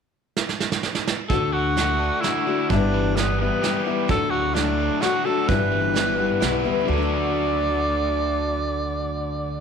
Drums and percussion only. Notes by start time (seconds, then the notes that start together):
0.37 snare
0.49 snare
0.60 snare
0.72 snare
0.83 snare
0.95 snare
1.07 snare
1.30 kick, closed hi-hat
1.76 snare, closed hi-hat
2.23 snare, closed hi-hat
2.70 kick, closed hi-hat
3.16 snare, closed hi-hat
3.63 snare, closed hi-hat
4.09 kick, closed hi-hat
4.55 snare, closed hi-hat
5.02 snare, closed hi-hat
5.48 kick, closed hi-hat
5.95 snare, closed hi-hat
6.41 snare, closed hi-hat